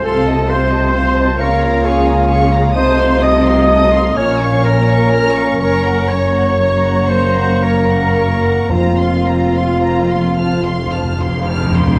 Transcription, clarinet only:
X:1
M:6/8
L:1/8
Q:3/8=42
K:Fphr
V:1 name="Clarinet"
=A c2 B _A z | c e2 d B2 | B d2 c B2 | F4- F z |]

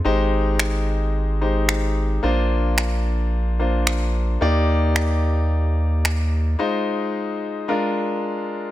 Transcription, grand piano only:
X:1
M:4/4
L:1/8
Q:1/4=110
K:Eb
V:1 name="Grand piano"
[A,EGc]4- [A,EGc] [A,EGc]3 | [B,DFc]4- [B,DFc] [B,DFc]3 | [B,EGd]8 | [A,EFc]4 [A,DFB]4 |]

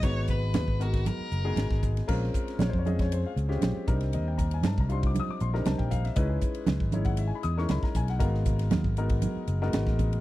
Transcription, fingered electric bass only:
X:1
M:4/4
L:1/16
Q:1/4=118
K:Ab
V:1 name="Fingered electric bass" clef=bass
A,,,4 E,, A,,,4 z _G,,,2 A,,, A,,,3 | B,,,2 z2 B,,, F,,4- F,, D,,2 B,,, z C,,2 | E,,4 G,, C,,4 z B,,,2 C,, B,,,3 | D,,2 z2 D,, A,,,4- A,,, _F,,2 D,, z _C,,2 |
A,,,4 E,, A,,,4 z _G,,,2 A,,, =A,,,3 |]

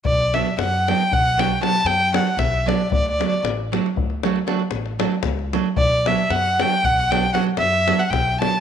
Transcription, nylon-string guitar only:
X:1
M:11/8
L:1/8
Q:1/4=115
K:Bm
V:1 name="Nylon-string guitar"
z [F,B,DF] z [F,B,DF] z [F,B,DF] [F,B,DF] z [F,B,DF] z [F,B,DF] | z [F,A,DF] z [F,A,DF] z [F,A,DF] [F,A,DF] z [F,A,DF] z [F,A,DF] | z [F,B,DF] z [F,B,DF] z [F,B,DF] [F,B,DF] z [F,B,DF] z [F,B,DF] |]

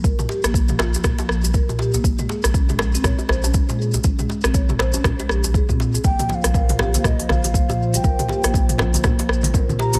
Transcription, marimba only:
X:1
M:4/4
L:1/16
Q:"Swing 16ths" 1/4=120
K:Bbdor
V:1 name="Marimba"
B z G B, z F, F z B, F, z G, B z G B, | z A, A z D A, z C d z c D z A, A z | D A, z C d z c D z A, G z A C z A | B, F, z G, B z G B, z F, F z B, F, z G, |
B z G B, z F, F z B, F, z G, B z G B, |]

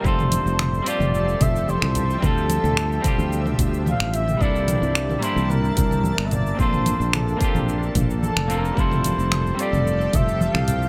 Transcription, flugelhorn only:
X:1
M:4/4
L:1/16
Q:1/4=110
K:F
V:1 name="Flugelhorn"
c6 d4 e2 c4 | A8- A2 z2 f2 e2 | d6 c2 B4- B3/2 e/2 d2 | c4 A4 z4 A2 B2 |
c6 d4 e2 f4 |]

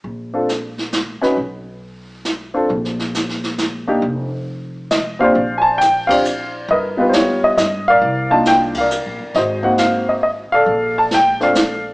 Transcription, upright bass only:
X:1
M:3/4
L:1/8
Q:"Swing" 1/4=136
K:Bb
V:1 name="Upright bass" clef=bass
B,,,4- B,,, z | =B,,,6 | B,,,4- B,,, _G,,, | F,,,6 |
B,,,6 | G,,,4 G,,2 | C,,4- (3C,, B,,, G,,, | _A,,,4- A,,, z |
B,,,6 |]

